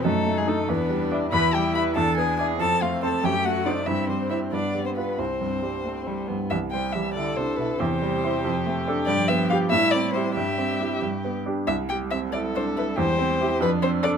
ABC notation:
X:1
M:6/8
L:1/16
Q:3/8=93
K:Em
V:1 name="Violin"
A3 _A =A2 B4 z2 | [K:C] b2 g2 b2 a2 _a2 a2 | a2 f2 a2 g2 ^f2 d2 | e2 c2 e2 d3 c B2 |
c8- c2 z2 | e2 g2 e2 d2 c2 B2 | c8- c2 z2 | d2 e2 f2 e2 d2 c2 |
e6 z6 | e2 g2 e2 d2 c2 B2 | c6 B2 c2 d2 |]
V:2 name="Violin"
^D6 =D6 | [K:C] E6 D6 | C6 A,6 | C6 B,6 |
C6 C2 G,2 B,2 | z6 A6 | G12- | G6 E6 |
G8- G z3 | z6 A6 | G6 D6 |]
V:3 name="Cello"
A,3 _A, =A,2 B,4 z2 | [K:C] B2 G2 B2 A2 _A2 A2 | A2 F2 A2 G2 ^F2 D2 | E2 C2 E2 D3 C B,2 |
C8- C2 z2 | E,2 G,2 E,2 D,2 C,2 B,,2 | C,8- C,2 z2 | F,6 G,6- |
G,8- G,2 z2 | G,12- | G,6 F,6 |]
V:4 name="Grand piano"
F,,2 A,2 [^DA]2 E,,2 G,2 [E=d]2 | [K:C] E,,2 G,2 [Ee]2 E,,2 B,2 [Ed]2 | F,,2 A,2 [Cc]2 ^F,,2 A,2 [^Dc]2 | G,,2 G,2 [Ec]2 G,,2 G,2 [FB]2 |
C,,2 G,,2 G,2 A,2 G,2 G,,2 | C,,2 c2 G,2 E2 D2 E2 | E,,2 G,2 [Ec]2 F,,2 A,2 [DA]2 | G,,2 B,2 [FG]2 A,,2 C2 [EG]2 |
G,,2 C2 [EG]2 G,,2 B,2 [DG]2 | C,,2 G2 C2 E2 D2 E2 | E,,2 C2 [EG]2 F,,2 C2 [DA]2 |]